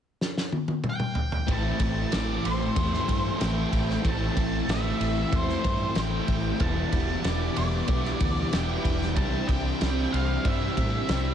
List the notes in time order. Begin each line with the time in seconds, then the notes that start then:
0.21 snare
0.38 snare
0.52 high tom
0.68 high tom
0.84 mid tom
0.90 G5
1.00 mid tom
1.15 floor tom
1.32 floor tom
1.48 A1 A2 E3 A3 C4 E4 A4 A5, kick, ride
1.80 A1 E3 A3 C4 E4, kick, ride
2.11 A1 A2 E3 A3 C4 E4 D5, snare, ride
2.43 A1 A2 E3 A3 C4 E4 C5, ride
2.75 E2 A2 E3 A3 C4 E4, kick, ride
2.94 snare
3.07 G2 E3 A3, kick, ride
3.37 A1 A2 E3 A3 C4 G5, ride
3.41 E4, snare
3.71 A1 E3 A3, kick, ride
3.90 snare
4.03 A1 A2 E3 A3 C4 E4, kick, ride
4.08 A5
4.36 A1 E3 A3 C4 E4, kick, ride
4.67 A1 A2 E3 A3 C4 E4 E5, snare, ride
4.98 A1 A2 E3 A3 C4 E4, ride
5.30 E2 A2 E3 A3 C4 E4, kick, ride
5.35 C5
5.49 snare
5.63 G2 E3 A3, kick, ride
5.94 A1 A2 E3 A3 C4 E4, snare, ride
6.00 G5
6.26 A1 E3 A3, kick, ride
6.57 E1 E2 B2 E3 G3 B3 D4 G4, kick, ride
6.61 B3 E4 A5
6.92 E1 B2 E3 G3 B3 E4, kick, ride
7.23 E1 E2 B2 E3 G3 B3 E4, snare, ride
7.28 D5
7.55 E1 G3 B3 E4 D5, ride
7.60 E3
7.88 B1 E2 B2 E3 G3 B3 E4, kick, ride
8.05 snare
8.20 D2 B2 E3, kick, ride
8.52 E1 E2 B2 E3 G3 B3 E4 G5, snare, ride
8.85 E1 B2 E3, kick, ride
9.02 snare
9.16 C2 C3 E3 G3 C4 E4 A5, kick, ride
9.48 C2 G3 C4 E4 G5, kick, ride
9.80 C2 C3 E3 G3 C4 E4, snare, ride
10.11 C2 G3 C4 E4 F5, ride
10.15 C3
10.45 G2 C3 E3 G3 C4 E4 E5, kick, ride
10.77 A2 G3 C4, kick, ride
11.08 C2 C3 E3 G3 C4 E4, snare, ride